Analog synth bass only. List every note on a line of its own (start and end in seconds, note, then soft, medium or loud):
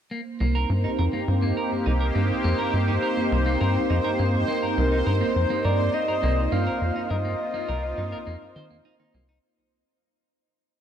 0.40 0.65 C2 medium
0.70 0.86 G2 medium
0.99 1.09 F2 medium
1.28 1.53 G2 medium
1.86 2.11 C2 medium
2.15 2.32 G2 medium
2.44 2.54 F2 medium
2.73 2.98 G2 medium
3.32 3.57 C2 loud
3.61 3.78 G2 medium
3.90 4.00 F2 medium
4.19 4.44 G2 medium
4.77 5.02 C2 loud
5.06 5.23 G2 medium
5.36 5.46 F2 medium
5.65 5.90 G2 medium
6.23 6.48 C2 loud
6.52 6.69 G2 medium
6.81 6.91 F2 medium
7.10 7.35 G2 medium
7.69 7.94 C2 loud
7.98 8.14 G2 medium
8.27 8.37 F2 medium
8.56 8.81 D#3 medium
9.14 9.39 C2 loud